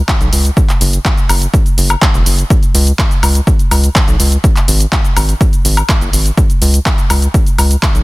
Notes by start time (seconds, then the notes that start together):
0.08 kick, clap, closed hi-hat, shaker
0.21 B1, closed hi-hat, shaker
0.33 C#2, open hi-hat, shaker
0.45 closed hi-hat, shaker
0.57 kick, closed hi-hat, shaker
0.69 clap, closed hi-hat, shaker
0.81 F#1, open hi-hat, shaker
0.93 closed hi-hat, shaker
1.05 kick, clap, closed hi-hat, shaker
1.17 closed hi-hat, shaker
1.29 F#1, open hi-hat, high woodblock, shaker
1.42 closed hi-hat, shaker
1.54 kick, closed hi-hat, shaker
1.66 closed hi-hat, shaker
1.78 F#1, open hi-hat, shaker
1.90 closed hi-hat, high woodblock, shaker
2.02 kick, clap, closed hi-hat, shaker
2.14 E1, closed hi-hat, shaker
2.26 F#1, open hi-hat, shaker
2.38 closed hi-hat, shaker
2.50 kick, closed hi-hat, shaker
2.63 closed hi-hat, shaker
2.75 C#2, open hi-hat, shaker
2.87 closed hi-hat, shaker
2.99 kick, clap, closed hi-hat, shaker
3.11 closed hi-hat, shaker
3.23 C#2, open hi-hat, high woodblock, shaker
3.35 closed hi-hat, shaker
3.47 kick, closed hi-hat, shaker
3.59 closed hi-hat, shaker
3.71 C#2, open hi-hat, high woodblock, shaker
3.84 closed hi-hat, shaker
3.96 kick, clap, closed hi-hat, shaker
4.08 B1, closed hi-hat, shaker
4.20 C#2, open hi-hat, shaker
4.32 closed hi-hat, shaker
4.44 kick, closed hi-hat, shaker
4.56 clap, closed hi-hat, shaker
4.68 G#1, open hi-hat, shaker
4.80 closed hi-hat, shaker
4.92 kick, clap, closed hi-hat, shaker
5.05 closed hi-hat, shaker
5.17 G#1, open hi-hat, high woodblock, shaker
5.29 closed hi-hat, shaker
5.41 kick, closed hi-hat, shaker
5.53 closed hi-hat, shaker
5.65 G#1, open hi-hat, shaker
5.77 closed hi-hat, high woodblock, shaker
5.89 kick, clap, closed hi-hat, shaker
6.01 F#1, closed hi-hat, shaker
6.13 G#1, open hi-hat, shaker
6.26 closed hi-hat, shaker
6.38 kick, closed hi-hat, shaker
6.50 closed hi-hat, shaker
6.62 C#2, open hi-hat, shaker
6.74 closed hi-hat, shaker
6.86 kick, clap, closed hi-hat, shaker
6.98 closed hi-hat, shaker
7.10 C#2, open hi-hat, high woodblock, shaker
7.22 closed hi-hat, shaker
7.34 kick, closed hi-hat, shaker
7.46 closed hi-hat, shaker
7.58 C#2, open hi-hat, high woodblock, shaker
7.71 closed hi-hat, shaker
7.83 kick, clap, closed hi-hat, shaker
7.95 B1, closed hi-hat, shaker